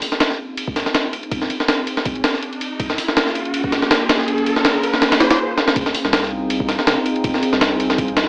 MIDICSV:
0, 0, Header, 1, 5, 480
1, 0, Start_track
1, 0, Key_signature, -4, "minor"
1, 0, Tempo, 370370
1, 1706, Time_signature, 4, 2, 24, 8
1, 10737, End_track
2, 0, Start_track
2, 0, Title_t, "Ambient pad"
2, 0, Program_c, 0, 92
2, 0, Note_on_c, 0, 60, 80
2, 0, Note_on_c, 0, 63, 72
2, 0, Note_on_c, 0, 65, 73
2, 0, Note_on_c, 0, 68, 88
2, 3585, Note_off_c, 0, 65, 0
2, 3585, Note_off_c, 0, 68, 0
2, 3586, Note_off_c, 0, 63, 0
2, 3587, Note_off_c, 0, 60, 0
2, 3623, Note_on_c, 0, 58, 84
2, 3624, Note_on_c, 0, 65, 75
2, 3624, Note_on_c, 0, 68, 91
2, 3625, Note_on_c, 0, 61, 75
2, 7426, Note_off_c, 0, 58, 0
2, 7426, Note_off_c, 0, 65, 0
2, 7426, Note_off_c, 0, 68, 0
2, 7427, Note_off_c, 0, 61, 0
2, 7467, Note_on_c, 0, 60, 84
2, 7468, Note_on_c, 0, 68, 92
2, 7469, Note_on_c, 0, 63, 76
2, 7469, Note_on_c, 0, 65, 76
2, 10737, Note_off_c, 0, 60, 0
2, 10737, Note_off_c, 0, 63, 0
2, 10737, Note_off_c, 0, 65, 0
2, 10737, Note_off_c, 0, 68, 0
2, 10737, End_track
3, 0, Start_track
3, 0, Title_t, "Sub bass"
3, 0, Program_c, 1, 38
3, 7466, Note_on_c, 1, 29, 99
3, 7583, Note_off_c, 1, 29, 0
3, 7835, Note_on_c, 1, 36, 81
3, 8775, Note_off_c, 1, 36, 0
3, 8904, Note_on_c, 1, 29, 88
3, 9022, Note_off_c, 1, 29, 0
3, 9384, Note_on_c, 1, 29, 99
3, 9502, Note_off_c, 1, 29, 0
3, 9755, Note_on_c, 1, 36, 80
3, 10695, Note_off_c, 1, 36, 0
3, 10737, End_track
4, 0, Start_track
4, 0, Title_t, "Riser"
4, 0, Program_c, 2, 103
4, 0, Note_on_c, 2, 60, 72
4, 6985, Note_off_c, 2, 60, 0
4, 10737, End_track
5, 0, Start_track
5, 0, Title_t, "Drums"
5, 24, Note_on_c, 9, 46, 73
5, 153, Note_off_c, 9, 46, 0
5, 155, Note_on_c, 9, 38, 46
5, 264, Note_off_c, 9, 38, 0
5, 264, Note_on_c, 9, 38, 109
5, 264, Note_on_c, 9, 51, 81
5, 393, Note_off_c, 9, 38, 0
5, 393, Note_off_c, 9, 51, 0
5, 395, Note_on_c, 9, 38, 37
5, 524, Note_off_c, 9, 38, 0
5, 744, Note_on_c, 9, 51, 82
5, 874, Note_off_c, 9, 51, 0
5, 875, Note_on_c, 9, 36, 90
5, 985, Note_on_c, 9, 38, 42
5, 985, Note_on_c, 9, 51, 64
5, 1005, Note_off_c, 9, 36, 0
5, 1115, Note_off_c, 9, 38, 0
5, 1115, Note_off_c, 9, 51, 0
5, 1116, Note_on_c, 9, 38, 44
5, 1225, Note_off_c, 9, 38, 0
5, 1225, Note_on_c, 9, 38, 108
5, 1225, Note_on_c, 9, 51, 82
5, 1355, Note_off_c, 9, 38, 0
5, 1355, Note_off_c, 9, 51, 0
5, 1464, Note_on_c, 9, 51, 67
5, 1594, Note_off_c, 9, 51, 0
5, 1595, Note_on_c, 9, 51, 41
5, 1704, Note_off_c, 9, 51, 0
5, 1704, Note_on_c, 9, 36, 105
5, 1704, Note_on_c, 9, 51, 85
5, 1833, Note_off_c, 9, 36, 0
5, 1833, Note_off_c, 9, 51, 0
5, 1835, Note_on_c, 9, 38, 35
5, 1943, Note_on_c, 9, 51, 64
5, 1964, Note_off_c, 9, 38, 0
5, 2073, Note_off_c, 9, 51, 0
5, 2075, Note_on_c, 9, 38, 47
5, 2183, Note_off_c, 9, 38, 0
5, 2183, Note_on_c, 9, 38, 112
5, 2183, Note_on_c, 9, 51, 85
5, 2312, Note_off_c, 9, 38, 0
5, 2312, Note_off_c, 9, 51, 0
5, 2423, Note_on_c, 9, 51, 66
5, 2553, Note_off_c, 9, 51, 0
5, 2555, Note_on_c, 9, 38, 51
5, 2662, Note_on_c, 9, 51, 84
5, 2663, Note_on_c, 9, 36, 108
5, 2685, Note_off_c, 9, 38, 0
5, 2792, Note_off_c, 9, 51, 0
5, 2793, Note_off_c, 9, 36, 0
5, 2794, Note_on_c, 9, 51, 42
5, 2902, Note_off_c, 9, 51, 0
5, 2902, Note_on_c, 9, 38, 100
5, 2902, Note_on_c, 9, 51, 77
5, 3032, Note_off_c, 9, 38, 0
5, 3032, Note_off_c, 9, 51, 0
5, 3033, Note_on_c, 9, 38, 35
5, 3143, Note_on_c, 9, 51, 60
5, 3162, Note_off_c, 9, 38, 0
5, 3273, Note_off_c, 9, 51, 0
5, 3274, Note_on_c, 9, 51, 39
5, 3384, Note_off_c, 9, 51, 0
5, 3384, Note_on_c, 9, 51, 66
5, 3513, Note_off_c, 9, 51, 0
5, 3623, Note_on_c, 9, 36, 107
5, 3624, Note_on_c, 9, 51, 88
5, 3753, Note_off_c, 9, 36, 0
5, 3753, Note_off_c, 9, 51, 0
5, 3755, Note_on_c, 9, 38, 47
5, 3864, Note_on_c, 9, 46, 75
5, 3884, Note_off_c, 9, 38, 0
5, 3993, Note_off_c, 9, 46, 0
5, 3996, Note_on_c, 9, 38, 47
5, 4105, Note_off_c, 9, 38, 0
5, 4105, Note_on_c, 9, 38, 114
5, 4105, Note_on_c, 9, 51, 86
5, 4235, Note_off_c, 9, 38, 0
5, 4235, Note_off_c, 9, 51, 0
5, 4236, Note_on_c, 9, 38, 40
5, 4345, Note_on_c, 9, 51, 67
5, 4366, Note_off_c, 9, 38, 0
5, 4475, Note_off_c, 9, 51, 0
5, 4476, Note_on_c, 9, 51, 44
5, 4585, Note_off_c, 9, 51, 0
5, 4585, Note_on_c, 9, 51, 86
5, 4714, Note_off_c, 9, 51, 0
5, 4716, Note_on_c, 9, 36, 92
5, 4825, Note_on_c, 9, 38, 46
5, 4825, Note_on_c, 9, 51, 67
5, 4845, Note_off_c, 9, 36, 0
5, 4955, Note_off_c, 9, 38, 0
5, 4955, Note_off_c, 9, 51, 0
5, 4956, Note_on_c, 9, 38, 46
5, 5065, Note_off_c, 9, 38, 0
5, 5065, Note_on_c, 9, 38, 115
5, 5065, Note_on_c, 9, 51, 86
5, 5195, Note_off_c, 9, 38, 0
5, 5195, Note_off_c, 9, 51, 0
5, 5305, Note_on_c, 9, 38, 104
5, 5305, Note_on_c, 9, 51, 81
5, 5435, Note_off_c, 9, 38, 0
5, 5435, Note_off_c, 9, 51, 0
5, 5436, Note_on_c, 9, 38, 35
5, 5546, Note_on_c, 9, 51, 61
5, 5566, Note_off_c, 9, 38, 0
5, 5675, Note_off_c, 9, 51, 0
5, 5676, Note_on_c, 9, 51, 41
5, 5785, Note_off_c, 9, 51, 0
5, 5785, Note_on_c, 9, 51, 67
5, 5914, Note_off_c, 9, 51, 0
5, 5914, Note_on_c, 9, 38, 51
5, 6023, Note_off_c, 9, 38, 0
5, 6023, Note_on_c, 9, 38, 115
5, 6023, Note_on_c, 9, 51, 90
5, 6153, Note_off_c, 9, 38, 0
5, 6153, Note_off_c, 9, 51, 0
5, 6264, Note_on_c, 9, 51, 66
5, 6394, Note_off_c, 9, 51, 0
5, 6396, Note_on_c, 9, 38, 53
5, 6504, Note_off_c, 9, 38, 0
5, 6504, Note_on_c, 9, 38, 105
5, 6504, Note_on_c, 9, 51, 80
5, 6634, Note_off_c, 9, 38, 0
5, 6634, Note_off_c, 9, 51, 0
5, 6635, Note_on_c, 9, 38, 105
5, 6635, Note_on_c, 9, 51, 78
5, 6745, Note_off_c, 9, 38, 0
5, 6745, Note_off_c, 9, 51, 0
5, 6745, Note_on_c, 9, 38, 107
5, 6745, Note_on_c, 9, 51, 80
5, 6874, Note_off_c, 9, 38, 0
5, 6874, Note_off_c, 9, 51, 0
5, 6875, Note_on_c, 9, 38, 107
5, 6875, Note_on_c, 9, 51, 80
5, 7005, Note_off_c, 9, 38, 0
5, 7005, Note_off_c, 9, 51, 0
5, 7225, Note_on_c, 9, 38, 62
5, 7355, Note_off_c, 9, 38, 0
5, 7356, Note_on_c, 9, 38, 75
5, 7465, Note_on_c, 9, 36, 110
5, 7465, Note_on_c, 9, 51, 89
5, 7486, Note_off_c, 9, 38, 0
5, 7594, Note_off_c, 9, 51, 0
5, 7595, Note_off_c, 9, 36, 0
5, 7596, Note_on_c, 9, 38, 48
5, 7704, Note_on_c, 9, 46, 79
5, 7725, Note_off_c, 9, 38, 0
5, 7834, Note_off_c, 9, 46, 0
5, 7836, Note_on_c, 9, 38, 47
5, 7944, Note_off_c, 9, 38, 0
5, 7944, Note_on_c, 9, 38, 113
5, 7944, Note_on_c, 9, 51, 88
5, 8074, Note_off_c, 9, 38, 0
5, 8074, Note_off_c, 9, 51, 0
5, 8075, Note_on_c, 9, 38, 40
5, 8205, Note_off_c, 9, 38, 0
5, 8424, Note_on_c, 9, 51, 86
5, 8554, Note_off_c, 9, 51, 0
5, 8555, Note_on_c, 9, 36, 95
5, 8664, Note_on_c, 9, 38, 46
5, 8664, Note_on_c, 9, 51, 68
5, 8685, Note_off_c, 9, 36, 0
5, 8794, Note_off_c, 9, 38, 0
5, 8794, Note_off_c, 9, 51, 0
5, 8796, Note_on_c, 9, 38, 46
5, 8905, Note_off_c, 9, 38, 0
5, 8905, Note_on_c, 9, 38, 115
5, 8905, Note_on_c, 9, 51, 86
5, 9035, Note_off_c, 9, 38, 0
5, 9035, Note_off_c, 9, 51, 0
5, 9145, Note_on_c, 9, 51, 69
5, 9275, Note_off_c, 9, 51, 0
5, 9276, Note_on_c, 9, 51, 44
5, 9384, Note_off_c, 9, 51, 0
5, 9384, Note_on_c, 9, 36, 110
5, 9384, Note_on_c, 9, 51, 87
5, 9513, Note_off_c, 9, 51, 0
5, 9514, Note_off_c, 9, 36, 0
5, 9516, Note_on_c, 9, 38, 38
5, 9625, Note_on_c, 9, 51, 70
5, 9645, Note_off_c, 9, 38, 0
5, 9754, Note_off_c, 9, 51, 0
5, 9756, Note_on_c, 9, 38, 50
5, 9865, Note_off_c, 9, 38, 0
5, 9865, Note_on_c, 9, 38, 115
5, 9865, Note_on_c, 9, 51, 88
5, 9995, Note_off_c, 9, 38, 0
5, 9995, Note_off_c, 9, 51, 0
5, 10106, Note_on_c, 9, 51, 69
5, 10236, Note_off_c, 9, 51, 0
5, 10236, Note_on_c, 9, 38, 55
5, 10345, Note_on_c, 9, 36, 107
5, 10345, Note_on_c, 9, 51, 86
5, 10366, Note_off_c, 9, 38, 0
5, 10474, Note_off_c, 9, 36, 0
5, 10475, Note_off_c, 9, 51, 0
5, 10475, Note_on_c, 9, 51, 43
5, 10584, Note_off_c, 9, 51, 0
5, 10584, Note_on_c, 9, 38, 105
5, 10584, Note_on_c, 9, 51, 80
5, 10714, Note_off_c, 9, 38, 0
5, 10714, Note_off_c, 9, 51, 0
5, 10737, End_track
0, 0, End_of_file